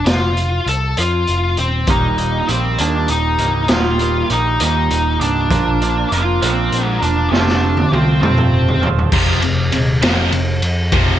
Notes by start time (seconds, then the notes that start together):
0.06 F1 F4 F5, snare, closed hi-hat
0.37 closed hi-hat
0.66 C2 A4 A5, closed hi-hat
0.97 F2 F4 F5, closed hi-hat
1.27 F1, closed hi-hat
1.57 D#1 C4 C5, closed hi-hat
1.87 D#1 D#2 A#2 D#3 G3 A#3 D#4 D#5, kick, closed hi-hat
2.18 D#3 G3 A#3 D#4, closed hi-hat
2.48 A#1 D#3 G3 A#3 C4 C5, closed hi-hat
2.78 D#2 A#2 D#3 G3 A#3 D4 D5, closed hi-hat
3.08 D#1 D#4 D#5, closed hi-hat
3.38 C1 D#3 G3 A#3 D#4, closed hi-hat
3.68 D#1 D#2 A#2 D#3 G3 A#3 D#4 F4 F5, snare, closed hi-hat
3.99 D#3 G3 A#3 D#4, closed hi-hat
4.30 A#1 D#3 G3 A#3 D#4 D#5, closed hi-hat
4.60 D#2 A#2 D#3 G3 A#3 D#4, closed hi-hat
4.64 D#5
4.90 D#1, closed hi-hat
5.20 C1 D#3 G3 A#3 D4 D#4 D5, closed hi-hat
5.49 A#1 A#2 F3 A#3 D4 F4 A#4, kick, closed hi-hat
5.81 A#3 D4 F4 A#4, closed hi-hat
6.11 F1 A#3 D4 F4 A#4 F5, closed hi-hat
6.41 A#1 A#2 F3 A#3 C4 D4 F4 A#4 C5, closed hi-hat
6.72 A#1, closed hi-hat
6.86 A#4
7.01 E1 A#3 D4 F4 A#4 D5, closed hi-hat
7.30 F1 F2 C3 F3 A3 C4 D4 F4 D5, snare
7.48 snare
7.63 F3 A3 C4 F4
7.77 high tom
7.91 C2 F3 A3 C4 F4 C5, high tom
8.21 F2 C3 F3 A3 C4 F4 C5, mid tom
8.38 mid tom
8.52 F1
8.68 floor tom
8.81 D#1 F3 A3 C4 F4, floor tom
8.99 floor tom
9.12 F1 F2 C3 F3, kick, crash
9.41 F1 F2 C3, ride
9.72 D#1 F2 C3, ride
10.02 F1 F2 C3 F3, snare, ride
10.32 F1 F2 C3, ride
10.62 F2, ride
10.92 F1 F2 C3 F3, kick, ride